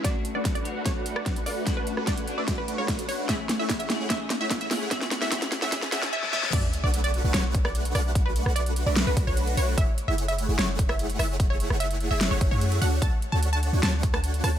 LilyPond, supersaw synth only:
\new Staff \with { instrumentName = "Supersaw synth" } { \time 4/4 \key b \dorian \tempo 4 = 148 <a d' fis' b' fis''>16 r8 <a d' fis' b' fis''>4 <a d' fis' b' fis''>16 <a fis' b'>4. <a d' fis' b' fis''>8~ | <a d' fis' b' fis''>8. <a d' fis' b' fis''>4 <a d' fis' b' e''>8 <a d' fis' b' fis''>16 <a d' fis' b' fis''>16 <a d' fis' b' fis''>8. <a d' fis' b' fis''>8 | <a e' gis' cis''>16 r8 <a e' gis' cis'' fis''>4 <a e' gis' cis'' fis''>16 r8. <a e' gis' cis'' fis''>4 <a e' gis' cis'' fis''>16 | fis''16 r8 <a e' gis' cis'' fis''>16 <a e' gis' cis'' fis''>16 r8 <a e' gis' cis'' fis''>16 <a e' cis'' fis''>16 r16 <a e' gis' cis'' fis''>16 r4 r16 |
<a d' fis' b' fis''>16 r8 <a d' fis' b' fis''>4 <a d' fis' b' fis''>16 <a d' fis' b' fis''>4. <a d' fis' b' fis''>8~ | <a d' fis' b' fis''>8. <a d' fis' b' fis''>4 <a d' fis' b' e''>8 <a d' fis' b' fis''>16 <a d' fis' b' fis''>16 <a d' fis' b' fis''>8. <a d' fis' b' fis''>8 | <a e' gis' cis'' fis''>16 r8 <a e' gis' cis'' fis''>4 <a e' gis' cis'' fis''>16 <a e' gis' cis'' fis''>4. <a e' gis' cis'' fis''>8~ | <a e' gis' cis'' fis''>8. <a e' gis' cis'' fis''>4 <a e' gis' cis'' e''>8 <a e' gis' cis'' fis''>16 <a e' cis''>16 <a e' gis' cis'' fis''>8. <a d' fis' cis'' fis''>8 |
<a d' fis' cis'' fis''>16 r8 <a d' fis' cis'' fis''>4 <a d' fis' cis'' fis''>16 <a d' fis' cis'' fis''>4. <a d' fis' cis'' fis''>8 | }